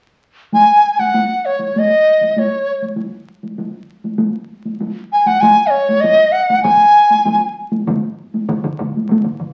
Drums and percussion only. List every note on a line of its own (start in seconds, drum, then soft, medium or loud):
0.52 taiko high medium
0.99 taiko high soft
1.14 taiko high medium
1.60 taiko high soft
1.76 taiko high soft
2.21 taiko high soft
2.36 taiko high soft
2.82 taiko high soft
2.97 taiko high soft
3.43 taiko high soft
3.58 taiko high soft
4.04 taiko high soft
4.18 taiko high medium
4.65 taiko high soft
4.81 taiko high medium
5.27 taiko high soft
5.42 taiko high medium
5.89 taiko high soft
6.04 taiko high medium
6.50 taiko high soft
6.64 taiko low-mid medium
6.64 taiko high medium
7.10 taiko high soft
7.25 taiko high medium
7.72 taiko high medium
7.87 taiko low-mid medium
7.87 taiko mid medium
7.87 taiko high medium
8.34 taiko high soft
8.49 taiko low-mid medium
8.49 taiko mid medium
8.49 taiko high medium
8.64 taiko low-mid medium
8.64 taiko mid medium
8.79 taiko low-mid medium
8.79 taiko mid medium
8.79 taiko high soft
8.96 taiko high soft
9.09 taiko low-mid medium
9.09 taiko mid medium
9.09 taiko high medium
9.24 taiko low-mid medium
9.24 taiko mid medium
9.40 taiko low-mid medium
9.40 taiko mid medium